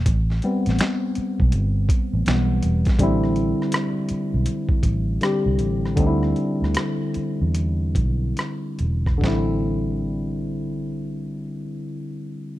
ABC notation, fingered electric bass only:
X:1
M:4/4
L:1/16
Q:"Swing 16ths" 1/4=78
K:Am
V:1 name="Fingered electric bass" clef=bass
A,,,2 z A,,, z3 B,,, G,,,2 z A,,, B,,,2 E,,, z | A,,,3 z4 B,,, z2 A,,,2 z C,, A,,,2 | D,,2 z D,, z3 E,,3 B,,,2 z2 E,,,2 | A,,,16 |]